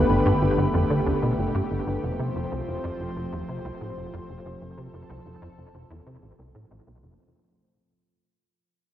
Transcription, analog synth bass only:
0.10 0.20 G1 medium
0.26 0.32 G2 loud
0.42 0.57 G1 medium
0.58 0.68 G1 medium
0.74 0.85 F2 medium
0.91 1.01 D3 medium
1.07 1.13 D2 medium
1.23 1.33 B2 medium
1.39 1.49 G1 medium
1.55 1.61 G2 medium
1.71 1.81 G1 medium
1.87 1.97 G1 medium
2.03 2.18 F1 medium
2.19 2.30 C3 medium
2.35 2.46 F1 medium
2.51 2.62 C2 loud
2.68 2.78 F1 medium
2.84 2.90 F2 medium
3.00 3.15 F1 medium
3.16 3.26 F1 medium
3.32 3.43 E2 medium
3.48 3.59 C3 medium
3.64 3.71 C2 medium
3.81 3.91 A2 medium
3.97 4.07 F1 medium
4.13 4.19 F2 medium
4.29 4.40 F1 medium
4.45 4.56 F1 medium
4.61 4.77 F1 medium
4.78 4.88 C3 medium
4.94 5.04 F1 medium
5.10 5.20 C2 medium
5.26 5.36 F1 medium
5.42 5.48 F2 medium
5.58 5.73 F1 medium
5.74 5.85 F1 medium
5.90 6.01 E2 medium
6.07 6.17 C3 medium
6.23 6.33 A1 medium
6.39 6.54 C2 medium
6.55 6.65 A2 medium
6.71 6.81 A1 medium
6.87 7.03 B1 medium
7.03 7.19 F1 medium

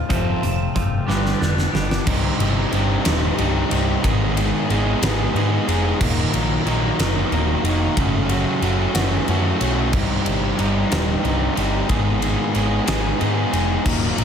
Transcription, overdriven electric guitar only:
0.09 0.41 F2 loud
0.09 0.41 C3 medium
0.09 0.41 F3 loud
0.42 0.72 F2 medium
0.42 0.72 C3 medium
0.75 1.05 F2 medium
0.75 1.05 C3 medium
1.08 1.39 G2 medium
1.08 1.39 D3 loud
1.08 1.40 G3 loud
1.41 1.71 G2 medium
1.41 1.71 D3 medium
1.73 2.03 G2 medium
1.73 2.04 D3 medium
2.06 2.72 C2 loud
2.06 2.71 G2 loud
2.06 2.40 C3 loud
2.06 2.39 G3 loud
2.06 2.38 D#4 loud
2.39 2.72 C3 medium
2.39 2.72 G3 medium
2.39 2.74 D#4 medium
2.72 3.36 G2 medium
2.72 3.05 C3 medium
2.72 3.05 G3 loud
2.72 3.04 D#4 medium
3.04 3.36 C3 medium
3.04 3.38 G3 medium
3.04 3.39 D#4 medium
3.37 4.01 G2 medium
3.37 3.71 C3 medium
3.37 3.70 G3 medium
3.37 3.69 D#4 medium
3.70 4.02 C3 medium
3.70 4.02 G3 medium
3.70 4.05 D#4 medium
4.03 4.69 G#2 loud
4.03 4.69 D#3 loud
4.03 4.37 G#3 loud
4.03 4.36 B3 loud
4.03 4.37 D#4 loud
4.03 4.35 G#4 loud
4.36 4.68 G#3 medium
4.36 4.68 B3 medium
4.36 4.70 D#4 medium
4.36 4.70 G#4 medium
4.69 5.03 G#3 medium
4.69 5.02 B3 medium
4.69 5.02 D#4 medium
4.69 5.01 G#4 medium
5.02 5.33 G#3 medium
5.02 5.34 B3 medium
5.02 5.35 D#4 medium
5.02 5.35 G#4 medium
5.35 5.68 G#3 medium
5.35 5.67 B3 medium
5.35 5.67 D#4 medium
5.35 5.66 G#4 medium
5.67 5.99 G#3 medium
5.67 5.99 B3 medium
5.67 5.99 D#4 medium
5.67 5.98 G#4 medium
6.00 6.66 D#2 loud
6.00 6.66 A#2 loud
6.00 6.34 D#3 loud
6.00 6.34 F#3 loud
6.00 6.33 A#3 loud
6.00 6.32 D#4 loud
6.33 6.64 D#3 medium
6.33 6.66 F#3 medium
6.33 6.66 A#3 medium
6.33 6.67 D#4 medium
6.66 7.00 D#3 medium
6.66 6.99 F#3 medium
6.66 6.99 A#3 medium
6.66 6.98 D#4 medium
6.99 7.30 D#3 medium
6.99 7.31 F#3 medium
6.99 7.31 A#3 medium
6.99 7.32 D#4 medium
7.31 7.64 D#3 medium
7.31 7.64 F#3 medium
7.31 7.64 A#3 medium
7.31 7.63 D#4 medium
7.64 7.96 D#3 medium
7.64 7.95 F#3 medium
7.64 7.95 A#3 medium
7.64 7.95 D#4 medium
7.96 8.62 F#2 loud
7.96 8.62 C#3 loud
7.96 8.30 F#3 medium
7.96 8.30 A3 loud
7.96 8.29 C#4 loud
7.96 8.28 F#4 loud
8.29 8.61 F#3 medium
8.29 8.62 A3 medium
8.29 8.62 C#4 medium
8.29 8.63 F#4 medium
8.62 8.96 F#3 medium
8.62 8.95 A3 medium
8.62 8.94 C#4 medium
8.62 8.93 F#4 medium
8.94 9.26 F#3 medium
8.94 9.27 A3 medium
8.94 9.28 C#4 medium
8.94 9.28 F#4 medium
9.27 9.61 F#3 medium
9.27 9.60 A3 medium
9.27 9.60 C#4 medium
9.27 9.59 F#4 medium
9.60 9.92 F#3 medium
9.60 9.92 A3 medium
9.60 9.91 C#4 medium
9.60 9.91 F#4 medium
9.92 10.58 C2 loud
9.92 10.56 G2 loud
9.92 10.26 C3 loud
9.92 10.25 G3 medium
9.92 10.24 D#4 loud
10.25 10.57 C3 medium
10.25 10.58 G3 medium
10.25 10.59 D#4 medium
10.58 11.21 G2 medium
10.58 10.91 C3 medium
10.58 10.90 G3 medium
10.58 10.90 D#4 loud
10.90 11.22 C3 medium
10.90 11.23 G3 medium
10.90 11.24 D#4 medium
11.22 11.87 G2 medium
11.22 11.56 C3 medium
11.22 11.55 G3 medium
11.22 11.55 D#4 medium
11.55 11.88 C3 medium
11.55 11.87 G3 medium
11.55 11.89 D#4 medium
11.88 12.54 G#2 loud
11.88 12.54 D#3 loud
11.88 12.22 G#3 loud
11.88 12.21 B3 loud
11.88 12.21 D#4 loud
11.88 12.19 G#4 loud
12.21 12.52 G#3 medium
12.21 12.53 B3 medium
12.21 12.55 D#4 medium
12.21 12.54 G#4 medium
12.54 12.87 G#3 medium
12.54 12.87 B3 loud
12.54 12.86 D#4 medium
12.54 12.85 G#4 medium
12.86 13.18 G#3 medium
12.86 13.19 B3 medium
12.86 13.20 D#4 medium
12.86 13.20 G#4 medium
13.20 13.53 G#3 medium
13.20 13.53 B3 medium
13.20 13.52 D#4 medium
13.20 13.51 G#4 medium
13.52 13.85 G#3 medium
13.52 13.84 B3 medium
13.52 13.84 D#4 medium
13.52 13.84 G#4 medium
13.85 14.24 D#2 loud
13.85 14.24 A#2 loud
13.85 14.18 D#3 loud
13.85 14.18 F#3 loud
13.85 14.17 A#3 loud
13.85 14.17 D#4 loud
14.18 14.24 D#3 medium
14.18 14.24 F#3 medium
14.18 14.24 A#3 medium
14.18 14.24 D#4 medium

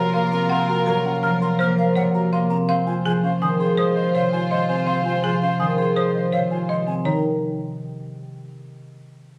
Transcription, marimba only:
0.14 0.38 F5 medium
0.49 0.74 F#5 loud
0.86 1.10 A#4 loud
1.23 1.47 A#5 medium
1.59 1.83 C5 loud
1.95 2.20 C#5 loud
2.33 2.56 F5 medium
2.69 2.92 F5 loud
3.06 3.29 G#4 loud
3.42 3.65 G#5 medium
3.77 4.01 C5 loud
4.15 4.38 C#5 medium
4.51 4.74 D#5 medium
4.87 5.11 F5 medium
5.24 5.47 G#4 medium
5.60 5.83 G#5 medium
5.96 6.20 C5 loud
6.32 6.56 C#5 medium
6.69 6.93 D#5 medium
7.05 7.22 C#5 medium

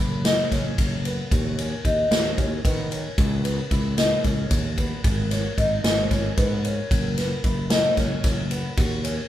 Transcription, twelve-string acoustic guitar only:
0.00 0.20 E4 medium
0.25 0.46 D#4 medium
0.52 0.94 C#4 medium
1.05 1.26 B3 medium
1.32 1.53 F#4 medium
1.58 1.80 C#4 medium
1.85 2.27 D#4 medium
2.38 2.59 C#4 medium
2.65 2.86 B3 medium
2.91 3.34 C#4 medium
3.44 3.66 B3 medium
3.71 3.93 E4 medium
3.97 4.19 D#4 medium
4.24 4.67 C#4 medium
4.77 4.99 B3 medium
5.04 5.26 G#4 medium
5.31 5.52 C#4 medium
5.58 6.00 D#4 medium
6.11 6.32 C#4 medium
6.38 6.59 B3 medium
6.64 7.07 C#4 medium
7.18 7.39 B3 medium
7.44 7.65 E4 medium
7.71 7.92 D#4 medium
7.98 8.40 C#4 medium
8.51 8.72 B3 medium
8.78 8.99 F#4 medium
9.04 9.26 C#4 medium

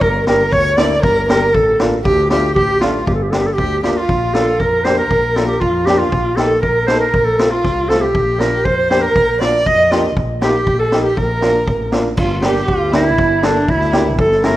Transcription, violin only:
0.02 0.27 A#4 medium
0.28 0.53 A#4 medium
0.52 0.77 C#5 loud
0.78 1.01 D5 medium
1.03 1.27 A#4 medium
1.28 1.56 A#4 medium
1.55 1.80 A4 medium
2.04 2.28 G4 medium
2.30 2.54 G4 medium
2.57 2.83 G4 medium
2.82 3.07 F4 medium
3.56 3.81 G4 medium
3.83 3.95 G4 medium
3.96 4.61 F4 medium
4.60 4.86 A#4 medium
4.84 4.97 C5 medium
4.97 5.62 A#4 medium
5.61 5.89 F4 medium
5.87 6.01 G4 medium
5.99 6.37 F4 medium
6.38 6.61 A4 medium
6.63 6.90 A#4 medium
6.88 7.02 C5 medium
7.00 7.51 A#4 medium
7.52 7.92 F4 medium
7.90 8.04 A4 medium
8.03 8.67 G4 medium
8.66 9.04 C5 medium
9.03 9.41 A#4 medium
9.41 9.68 D5 medium
9.66 10.04 D#5 medium
10.41 10.51 G4 medium
10.49 10.57 F4 medium
10.56 10.81 G4 medium
10.79 11.05 A4 medium
11.05 11.19 G4 medium
11.17 11.93 A#4 medium
12.18 12.41 F4 medium
12.43 12.69 G4 medium
12.67 12.94 F4 medium
12.92 13.44 E4 medium
13.42 13.69 D4 medium
13.68 14.05 E4 medium
14.18 14.41 A4 medium
14.43 14.57 A#4 medium

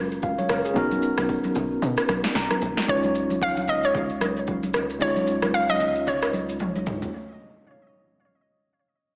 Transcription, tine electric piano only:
0.00 0.19 G#3 medium
0.00 0.19 C#4 medium
0.00 0.20 F4 medium
0.00 0.20 F#4 medium
0.00 0.21 A#4 medium
0.23 0.38 F5 medium
0.38 0.49 C#5 medium
0.50 0.64 A#4 medium
0.65 0.90 G#4 medium
0.74 2.83 B3 medium
0.74 2.84 C#4 medium
0.74 2.84 D#4 medium
0.74 2.85 F#4 medium
0.78 2.85 A#4 medium
2.35 2.85 A#5 medium
2.86 4.96 G#3 medium
2.86 4.96 C#4 medium
2.86 4.97 D#4 medium
2.86 4.97 F4 medium
2.91 2.97 B4 medium
2.97 5.01 C#5 medium
4.99 7.08 G#3 medium
4.99 7.09 C#4 medium
4.99 7.09 D#4 medium
4.99 7.10 F4 medium
5.03 7.10 C#5 medium

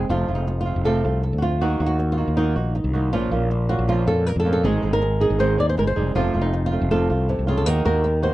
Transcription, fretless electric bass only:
0.09 0.27 F1 medium
0.28 0.72 F1 medium
0.76 1.02 F1 medium
1.05 1.31 C2 medium
1.33 1.61 D2 medium
1.61 1.79 D#2 medium
1.80 2.24 D#2 medium
2.28 2.54 D#2 medium
2.56 2.82 A#1 medium
2.84 3.13 C2 medium
3.13 3.30 A#1 medium
3.31 3.75 A#1 medium
3.79 4.05 A#1 medium
4.07 4.33 F2 medium
4.36 4.65 F2 medium
4.64 4.82 G#1 medium
4.83 5.27 G#1 medium
5.30 5.57 G#1 medium
5.59 5.76 D#2 medium
5.78 5.95 G1 medium
5.97 6.15 F1 medium
6.15 6.33 F1 medium
6.34 6.78 F1 medium
6.81 7.08 F1 medium
7.10 7.36 C2 medium
7.39 7.67 C2 medium
7.67 7.84 D#2 loud
7.86 8.29 D#2 medium

